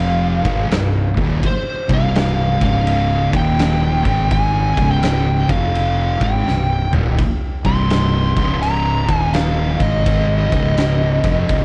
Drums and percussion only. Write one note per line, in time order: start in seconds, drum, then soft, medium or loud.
0.45 kick loud
0.45 ride medium
0.71 snare loud
0.71 ride medium
1.17 kick loud
1.17 ride medium
1.43 kick loud
1.43 ride medium
1.89 kick loud
1.89 ride medium
2.15 snare loud
2.15 ride medium
2.61 kick loud
2.61 ride medium
2.87 ride medium
3.33 kick loud
3.33 ride medium
3.59 snare loud
3.59 ride loud
4.05 kick loud
4.05 ride medium
4.31 kick loud
4.31 ride loud
4.77 kick loud
4.77 ride medium
5.03 snare loud
5.03 ride loud
5.49 kick loud
5.49 ride medium
5.75 ride medium
6.21 kick loud
6.21 ride medium
6.48 snare medium
6.93 mid tom medium
7.06 floor tom medium
7.19 kick loud
7.19 ride medium
7.65 kick loud
7.65 ride medium
7.90 snare loud
7.90 ride medium
8.36 kick loud
8.36 ride medium
8.62 ride medium
9.09 kick loud
9.09 ride medium
9.34 snare loud
9.34 ride loud
9.80 kick loud
9.80 ride medium
10.06 kick loud
10.06 ride loud
10.52 kick loud
10.52 ride medium
10.77 snare loud
10.77 ride loud
11.24 kick loud
11.24 snare soft
11.24 ride medium
11.49 kick loud
11.49 ride medium